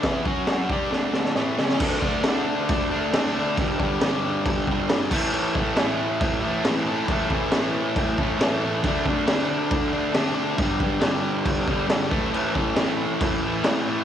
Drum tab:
CC |x---x-----------|x---x---x---x---|x---x---x---x-x-|x---x---x---x---|
SD |o---o---o-ooo-oo|----o-------o---|----o-------o---|----o-------o---|
BD |o-o---o---------|o-o-----o-------|o-o-----o-o---o-|--o-----o-------|

CC |x---x---x---x---|x---x---x---x---|x---x---x---x---|x---x---x---x---|
SD |----o-------o---|----o-------o---|----o-------o---|----o-------o---|
BD |o-o-----o-o-----|o-o-----o-------|o-o-----o-o---o-|--o-----o-------|